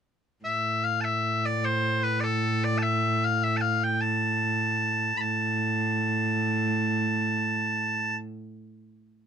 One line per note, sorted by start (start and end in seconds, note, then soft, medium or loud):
0.44 5.19 A2 medium
0.44 0.84 E5 medium
0.84 1.01 F5 medium
1.01 1.45 E5 medium
1.01 1.04 A5 medium
1.45 1.65 D5 medium
1.65 2.03 C5 medium
2.03 2.20 B4 medium
2.20 2.64 A4 medium
2.20 2.24 D5 medium
2.64 2.78 D5 medium
2.78 2.83 A5 medium
2.83 3.24 E5 medium
3.24 3.43 F5 medium
3.43 3.57 E5 medium
3.57 3.61 A5 medium
3.61 3.83 F5 medium
3.83 4.01 G5 medium
4.01 5.17 A5 medium
5.17 8.19 A2 medium
5.17 8.16 A5 medium
5.17 5.21 B5 medium